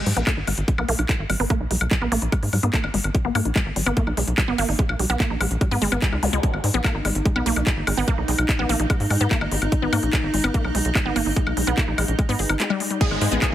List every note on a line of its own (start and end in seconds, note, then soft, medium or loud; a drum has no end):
0.06 0.13 G#2 loud
0.06 0.10 G3 medium
0.06 open hi-hat loud
0.17 0.23 A#1 medium
0.17 0.25 B3 loud
0.17 closed hi-hat medium
0.27 0.30 A#3 loud
0.27 kick loud
0.27 clap loud
0.27 closed hi-hat medium
0.27 high woodblock medium
0.37 0.43 G#1 medium
0.37 0.41 D#4 medium
0.47 0.54 G#1 loud
0.47 0.56 G#3 medium
0.47 open hi-hat loud
0.47 high woodblock soft
0.58 0.64 G#1 medium
0.58 closed hi-hat medium
0.68 0.71 G3 medium
0.68 kick loud
0.68 closed hi-hat medium
0.78 0.84 B1 medium
0.78 0.87 B3 loud
0.78 high woodblock medium
0.89 0.95 B1 loud
0.89 0.92 A#3 loud
0.89 open hi-hat loud
0.99 1.05 B1 medium
0.99 1.02 D#4 medium
0.99 closed hi-hat medium
0.99 high woodblock soft
1.09 1.18 G#3 medium
1.09 kick loud
1.09 clap loud
1.09 closed hi-hat medium
1.19 1.26 G#1 medium
1.30 1.36 G#1 loud
1.30 1.33 G3 medium
1.30 open hi-hat loud
1.30 high woodblock medium
1.40 1.46 G#1 medium
1.40 1.48 B3 loud
1.40 open hi-hat medium
1.50 1.54 A#3 loud
1.50 kick loud
1.50 closed hi-hat medium
1.50 high woodblock soft
1.60 1.67 B1 medium
1.60 1.64 D#4 medium
1.71 1.77 B1 loud
1.71 1.79 G#3 medium
1.71 open hi-hat loud
1.81 1.87 B1 medium
1.81 closed hi-hat medium
1.81 high woodblock medium
1.91 1.95 G3 medium
1.91 kick loud
1.91 clap loud
1.91 closed hi-hat medium
2.02 2.08 A#1 medium
2.02 2.10 B3 loud
2.02 high woodblock soft
2.12 2.18 A#1 loud
2.12 2.15 A#3 loud
2.12 open hi-hat loud
2.22 2.28 A#1 medium
2.22 2.26 D#4 medium
2.22 closed hi-hat medium
2.32 2.41 G#3 medium
2.32 kick loud
2.32 closed hi-hat medium
2.32 high woodblock medium
2.43 2.49 G#2 medium
2.43 open hi-hat medium
2.53 2.59 G#2 loud
2.53 2.56 G3 medium
2.53 open hi-hat loud
2.53 high woodblock soft
2.63 2.69 G#2 medium
2.63 2.72 B3 loud
2.63 closed hi-hat medium
2.73 2.77 A#3 loud
2.73 kick loud
2.73 clap loud
2.73 closed hi-hat medium
2.84 2.90 G#1 medium
2.84 2.87 D#4 medium
2.84 high woodblock medium
2.94 3.00 G#1 loud
2.94 3.03 G#3 medium
2.94 open hi-hat loud
3.04 3.10 G#1 medium
3.04 closed hi-hat medium
3.04 high woodblock soft
3.15 3.18 G3 medium
3.15 kick loud
3.15 closed hi-hat medium
3.25 3.31 G#1 medium
3.25 3.33 B3 loud
3.35 3.41 G#2 loud
3.35 3.39 A#3 loud
3.35 open hi-hat loud
3.35 high woodblock medium
3.45 3.52 A#1 medium
3.45 3.49 D#4 medium
3.45 closed hi-hat medium
3.56 3.64 G#3 medium
3.56 kick loud
3.56 clap loud
3.56 closed hi-hat medium
3.56 high woodblock soft
3.66 3.72 G#1 medium
3.76 3.82 G#1 loud
3.76 3.80 G3 medium
3.76 open hi-hat loud
3.86 3.93 G#1 medium
3.86 3.95 B3 loud
3.86 closed hi-hat medium
3.86 high woodblock medium
3.97 4.00 A#3 loud
3.97 kick loud
3.97 closed hi-hat medium
4.07 4.13 B1 medium
4.07 4.10 D#4 medium
4.07 high woodblock soft
4.17 4.23 B1 loud
4.17 4.26 G#3 medium
4.17 open hi-hat loud
4.28 4.34 B1 medium
4.28 closed hi-hat medium
4.38 4.41 G3 medium
4.38 kick loud
4.38 clap loud
4.38 closed hi-hat medium
4.38 high woodblock medium
4.48 4.54 G#1 medium
4.48 4.57 B3 loud
4.58 4.65 G#1 loud
4.58 4.62 A#3 loud
4.58 open hi-hat loud
4.58 high woodblock soft
4.69 4.75 G#1 medium
4.69 4.72 D#4 medium
4.69 open hi-hat medium
4.79 4.88 G#3 medium
4.79 kick loud
4.79 closed hi-hat medium
4.89 4.95 B1 medium
4.89 high woodblock medium
4.99 5.06 B1 loud
4.99 5.03 G3 medium
4.99 open hi-hat loud
5.10 5.16 B1 medium
5.10 5.18 B3 loud
5.10 closed hi-hat medium
5.10 high woodblock soft
5.20 5.23 A#3 loud
5.20 kick loud
5.20 clap loud
5.20 closed hi-hat medium
5.30 5.36 A#1 medium
5.30 5.34 D#4 medium
5.41 5.47 A#1 loud
5.41 5.49 G#3 medium
5.41 open hi-hat loud
5.41 high woodblock medium
5.51 5.57 A#1 medium
5.51 closed hi-hat medium
5.61 5.65 G3 medium
5.61 kick loud
5.61 closed hi-hat medium
5.61 high woodblock soft
5.71 5.78 G#2 medium
5.71 5.80 B3 loud
5.71 open hi-hat medium
5.82 5.88 G#1 loud
5.82 5.87 G#3 loud
5.82 open hi-hat loud
5.92 5.98 G#1 medium
5.92 5.98 B3 loud
5.92 closed hi-hat medium
5.92 high woodblock medium
6.02 6.08 G#3 medium
6.02 kick loud
6.02 clap loud
6.02 closed hi-hat medium
6.12 6.19 C#2 medium
6.12 6.16 D#4 medium
6.12 high woodblock soft
6.23 6.29 C#2 loud
6.23 6.26 G#3 medium
6.23 open hi-hat loud
6.23 zap medium
6.33 6.39 C#2 medium
6.33 6.42 G#3 loud
6.33 closed hi-hat medium
6.43 6.52 G#3 medium
6.43 13.00 D#4 medium
6.43 kick loud
6.43 closed hi-hat medium
6.54 6.60 G#1 medium
6.54 high woodblock soft
6.64 6.70 G#2 loud
6.64 6.70 G#3 medium
6.64 open hi-hat loud
6.74 6.80 A#1 medium
6.74 6.83 B3 loud
6.74 closed hi-hat medium
6.84 6.88 A#3 loud
6.84 kick loud
6.84 clap loud
6.84 closed hi-hat medium
6.84 high woodblock medium
6.95 7.01 G#1 medium
6.95 6.98 D#4 medium
7.05 7.11 G#1 loud
7.05 7.14 G#3 medium
7.05 open hi-hat loud
7.05 high woodblock soft
7.15 7.21 G#1 medium
7.15 closed hi-hat medium
7.25 7.31 G#3 medium
7.25 kick loud
7.25 closed hi-hat medium
7.36 7.42 B1 medium
7.36 7.44 B3 loud
7.36 high woodblock medium
7.46 7.52 B1 loud
7.46 7.49 A#3 loud
7.46 open hi-hat loud
7.56 7.63 B1 medium
7.56 7.60 D#4 medium
7.56 closed hi-hat medium
7.56 high woodblock soft
7.67 7.75 G#3 medium
7.67 kick loud
7.67 clap loud
7.67 closed hi-hat medium
7.77 7.83 G#1 medium
7.87 7.93 G#1 loud
7.87 7.93 G#3 medium
7.87 open hi-hat loud
7.87 high woodblock medium
7.97 8.04 G#1 medium
7.97 8.06 B3 loud
7.97 open hi-hat medium
8.08 8.11 A#3 loud
8.08 kick loud
8.08 closed hi-hat medium
8.08 high woodblock soft
8.18 8.24 B1 medium
8.18 8.21 D#4 medium
8.28 8.34 B1 loud
8.28 8.37 G#3 medium
8.28 open hi-hat loud
8.39 8.45 B1 medium
8.39 closed hi-hat medium
8.39 high woodblock medium
8.49 8.55 G#3 medium
8.49 kick loud
8.49 clap loud
8.49 closed hi-hat medium
8.59 8.65 A#1 medium
8.59 8.68 B3 loud
8.59 high woodblock soft
8.69 8.76 A#1 loud
8.69 8.73 A#3 loud
8.69 open hi-hat loud
8.80 8.86 A#1 medium
8.80 8.83 D#4 medium
8.80 closed hi-hat medium
8.90 8.98 G#3 medium
8.90 kick loud
8.90 closed hi-hat medium
8.90 high woodblock medium
9.00 9.06 G#2 medium
9.00 open hi-hat medium
9.10 9.17 G#2 loud
9.10 9.16 G#3 medium
9.10 open hi-hat loud
9.10 high woodblock soft
9.21 9.27 G#2 medium
9.21 9.29 B3 loud
9.21 closed hi-hat medium
9.31 9.34 A#3 loud
9.31 kick loud
9.31 clap loud
9.31 closed hi-hat medium
9.41 9.47 G#1 medium
9.41 9.45 D#4 medium
9.41 high woodblock medium
9.52 9.58 G#1 loud
9.52 9.60 G#3 medium
9.52 open hi-hat loud
9.62 9.68 G#1 medium
9.62 closed hi-hat medium
9.62 high woodblock soft
9.72 9.78 G#3 medium
9.72 kick loud
9.72 closed hi-hat medium
9.82 9.89 G#1 medium
9.82 9.91 B3 loud
9.93 9.99 G#2 loud
9.93 9.96 A#3 loud
9.93 open hi-hat loud
9.93 high woodblock medium
10.03 10.09 A#1 medium
10.03 10.06 D#4 medium
10.03 closed hi-hat medium
10.13 10.22 G#3 medium
10.13 kick loud
10.13 clap loud
10.13 closed hi-hat medium
10.13 high woodblock soft
10.23 10.30 G#1 medium
10.34 10.40 G#1 loud
10.34 10.39 G#3 medium
10.34 open hi-hat loud
10.44 10.50 G#1 medium
10.44 10.53 B3 loud
10.44 closed hi-hat medium
10.44 high woodblock medium
10.54 10.58 A#3 loud
10.54 kick loud
10.54 closed hi-hat medium
10.65 10.71 B1 medium
10.65 10.68 D#4 medium
10.65 high woodblock soft
10.75 10.81 B1 loud
10.75 10.83 G#3 medium
10.75 open hi-hat loud
10.85 10.91 B1 medium
10.85 closed hi-hat medium
10.95 11.01 G#3 medium
10.95 kick loud
10.95 clap loud
10.95 closed hi-hat medium
10.95 high woodblock medium
11.06 11.12 G#1 medium
11.06 11.14 B3 loud
11.16 11.22 G#1 loud
11.16 11.19 A#3 loud
11.16 open hi-hat loud
11.16 high woodblock soft
11.26 11.32 G#1 medium
11.26 11.30 D#4 medium
11.26 open hi-hat medium
11.36 11.45 G#3 medium
11.36 kick loud
11.36 closed hi-hat medium
11.47 11.53 B1 medium
11.47 high woodblock medium
11.57 11.63 B1 loud
11.57 11.63 G#3 medium
11.57 open hi-hat loud
11.67 11.73 B1 medium
11.67 11.76 B3 loud
11.67 closed hi-hat medium
11.67 high woodblock soft
11.78 11.81 A#3 loud
11.78 kick loud
11.78 clap loud
11.78 closed hi-hat medium
11.88 11.94 A#1 medium
11.88 11.91 D#4 medium
11.98 12.04 A#1 loud
11.98 12.07 G#3 medium
11.98 open hi-hat loud
11.98 high woodblock medium
12.08 12.15 A#1 medium
12.08 closed hi-hat medium
12.19 12.24 G#3 medium
12.19 kick loud
12.19 closed hi-hat medium
12.19 high woodblock soft
12.29 12.35 G#2 medium
12.29 12.38 B3 loud
12.29 open hi-hat medium
12.39 12.45 G#1 loud
12.39 12.48 G#4 medium
12.39 open hi-hat loud
12.49 12.56 G#1 medium
12.49 12.53 D#4 medium
12.49 closed hi-hat medium
12.49 high woodblock medium
12.60 12.65 G#3 medium
12.60 clap loud
12.60 closed hi-hat medium
12.70 12.76 G3 loud
12.70 high woodblock soft
12.80 12.86 G#3 medium
12.80 open hi-hat loud
12.91 12.96 G3 medium
12.91 closed hi-hat medium
13.01 13.09 G#3 medium
13.01 13.55 D#4 medium
13.01 13.05 G#4 loud
13.01 kick loud
13.01 closed hi-hat medium
13.01 crash loud
13.01 downlifter medium
13.11 13.17 G#1 medium
13.11 13.16 G#3 medium
13.11 high woodblock soft
13.21 13.28 G#2 loud
13.21 13.26 G#3 medium
13.21 13.27 G#3 medium
13.21 open hi-hat loud
13.32 13.38 A#1 medium
13.32 13.36 G#3 medium
13.32 13.40 B3 loud
13.32 closed hi-hat medium
13.42 13.45 A#3 loud
13.42 13.46 G#4 medium
13.42 kick loud
13.42 clap loud
13.42 closed hi-hat medium
13.42 high woodblock medium